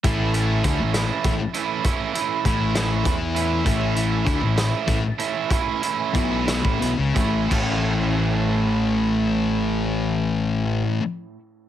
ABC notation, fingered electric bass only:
X:1
M:6/8
L:1/16
Q:3/8=63
K:A
V:1 name="Fingered electric bass" clef=bass
A,,,4 D,, A,,,2 z A,,, z3 | z4 A,,,4 E,,4 | A,,,4 D,, A,,,2 z A,,, z3 | z4 B,,,3 A,,, B,,, C,, A,,,2 |
A,,,12- | A,,,12 |]